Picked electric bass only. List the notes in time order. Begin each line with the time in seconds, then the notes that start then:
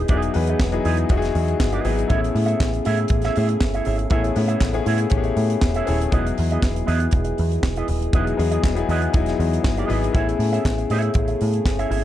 0.09 E1
0.36 E2
0.60 E1
0.85 E2
1.10 E1
1.35 E2
1.60 G1
1.85 G#1
2.10 A1
2.35 A2
2.60 A1
2.87 A2
3.10 A1
3.37 A2
3.61 G1
3.87 G#1
4.11 A1
4.37 A2
4.61 A1
4.87 A2
5.12 A1
5.37 A2
5.62 E1
5.88 D#1
6.13 E1
6.39 E2
6.63 E1
6.88 E2
7.13 E1
7.39 E2
7.63 E1
7.89 D#1
8.13 E1
8.39 E2
8.64 E1
8.89 E2
9.14 E1
9.40 E2
9.64 G1
9.90 G#1
10.14 A1
10.39 A2
10.65 A1
10.90 A2
11.15 A1
11.42 A2
11.65 G1
11.91 G#1